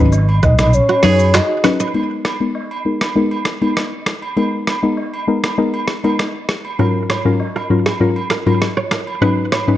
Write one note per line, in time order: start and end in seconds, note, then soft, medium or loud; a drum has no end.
0.00 0.39 G#1 loud
0.00 0.15 F#3 medium
0.00 0.15 C#4 medium
0.00 0.15 D#4 medium
0.00 0.15 B4 medium
0.12 low woodblock medium
0.12 shaker medium
0.29 high agogo medium
0.43 0.79 B1 medium
0.43 0.53 B4 medium
0.43 0.58 D#5 loud
0.43 kick medium
0.43 mid tom medium
0.43 shaker medium
0.59 0.75 D#5 loud
0.59 finger snap medium
0.59 cross-stick loud
0.59 mid tom medium
0.59 high agogo medium
0.59 shaker medium
0.73 1.36 C#5 loud
0.73 shaker medium
0.89 1.04 F#4 medium
0.89 high agogo medium
1.03 1.39 F#2 loud
1.03 1.21 F#3 medium
1.03 1.21 C#4 medium
1.03 1.21 D#4 medium
1.03 2.40 G#4 medium
1.03 1.22 B4 medium
1.03 finger snap medium
1.03 cross-stick medium
1.03 open hi-hat medium
1.03 shaker medium
1.19 high agogo medium
1.19 shaker medium
1.34 1.44 F#4 medium
1.34 1.80 D#5 loud
1.34 finger snap medium
1.34 cross-stick loud
1.34 clap loud
1.34 low woodblock medium
1.34 shaker medium
1.64 1.92 F#3 medium
1.64 1.92 C#4 medium
1.64 1.92 D#4 medium
1.64 1.74 B4 medium
1.64 1.92 B4 medium
1.64 finger snap medium
1.64 cross-stick loud
1.64 shaker medium
1.80 1.89 D#5 medium
1.80 high agogo medium
1.80 shaker medium
1.94 2.37 G#3 medium
1.94 2.37 B3 medium
1.94 2.37 D#4 medium
1.94 2.37 A#4 medium
1.94 high agogo medium
2.25 finger snap medium
2.25 cross-stick medium
2.25 high agogo medium
2.40 2.57 G#3 medium
2.40 2.57 B3 medium
2.40 2.57 D#4 medium
2.40 2.58 A#4 medium
2.55 low woodblock medium
2.71 high agogo medium
2.85 3.03 G#3 medium
2.85 3.03 B3 medium
2.85 3.03 D#4 medium
2.85 3.03 A#4 medium
3.01 finger snap medium
3.01 cross-stick medium
3.01 high agogo medium
3.15 3.33 G#3 loud
3.15 3.34 B3 medium
3.15 3.34 D#4 medium
3.15 3.34 A#4 loud
3.31 high agogo medium
3.45 finger snap medium
3.45 cross-stick medium
3.61 3.78 G#3 medium
3.61 3.79 B3 medium
3.61 3.79 D#4 medium
3.61 3.79 A#4 medium
3.61 high agogo medium
3.77 finger snap medium
3.77 cross-stick medium
3.77 low woodblock medium
4.06 finger snap medium
4.06 cross-stick medium
4.22 high agogo medium
4.37 4.79 G#3 medium
4.37 4.79 B3 medium
4.37 4.79 D#4 medium
4.37 4.79 A#4 medium
4.37 high agogo medium
4.67 finger snap medium
4.67 cross-stick medium
4.67 high agogo medium
4.83 5.00 G#3 medium
4.83 5.00 B3 medium
4.83 5.00 D#4 medium
4.83 5.00 A#4 medium
4.97 low woodblock medium
5.14 high agogo medium
5.28 5.45 G#3 medium
5.28 5.46 B3 medium
5.28 5.46 D#4 medium
5.28 5.46 A#4 medium
5.44 finger snap medium
5.44 cross-stick medium
5.44 high agogo medium
5.58 5.76 G#3 medium
5.58 5.76 B3 medium
5.58 5.76 D#4 medium
5.58 5.76 A#4 loud
5.74 high agogo medium
5.88 finger snap medium
5.88 cross-stick medium
6.04 6.21 G#3 medium
6.04 6.21 B3 medium
6.04 6.21 D#4 medium
6.04 6.21 A#4 medium
6.04 high agogo medium
6.19 finger snap medium
6.19 cross-stick medium
6.19 low woodblock medium
6.49 finger snap medium
6.49 cross-stick medium
6.65 high agogo medium
6.79 7.21 G#2 medium
6.79 7.22 F#3 medium
6.79 7.22 C#4 medium
6.79 7.22 F4 medium
6.79 6.89 A#4 medium
6.79 7.22 A#4 loud
6.79 high agogo medium
7.10 7.20 C#5 medium
7.10 finger snap medium
7.10 cross-stick medium
7.10 high agogo medium
7.25 7.42 G#2 medium
7.25 7.42 F#3 medium
7.25 7.42 C#4 medium
7.25 7.42 F4 medium
7.25 7.42 A#4 medium
7.40 low woodblock medium
7.56 7.65 A#4 medium
7.56 high agogo medium
7.70 7.88 G#2 medium
7.70 7.88 F#3 medium
7.70 7.88 C#4 medium
7.70 7.88 F4 medium
7.70 7.88 A#4 medium
7.86 7.95 G#4 medium
7.86 finger snap medium
7.86 cross-stick medium
7.86 high agogo medium
8.00 8.18 G#2 medium
8.00 8.18 F#3 medium
8.00 8.18 C#4 medium
8.00 8.18 F4 medium
8.00 8.19 A#4 loud
8.16 high agogo medium
8.30 8.41 A#4 medium
8.30 finger snap medium
8.30 cross-stick medium
8.46 8.63 G#2 medium
8.46 8.63 F#3 medium
8.46 8.63 C#4 medium
8.46 8.63 F4 medium
8.46 8.64 A#4 medium
8.46 high agogo medium
8.62 finger snap medium
8.62 cross-stick medium
8.62 low woodblock medium
8.77 8.86 C#5 medium
8.91 9.02 A#4 medium
8.91 finger snap medium
8.91 cross-stick medium
9.07 high agogo medium
9.21 9.64 G#2 medium
9.21 9.64 F#3 medium
9.21 9.64 C#4 medium
9.21 9.64 D#4 medium
9.21 9.32 B4 medium
9.21 9.64 B4 loud
9.21 high agogo medium
9.52 9.62 C#5 medium
9.52 finger snap medium
9.52 cross-stick medium
9.52 high agogo medium
9.68 9.77 G#2 medium
9.68 9.77 F#3 medium
9.68 9.77 C#4 medium
9.68 9.77 D#4 medium
9.68 9.77 B4 medium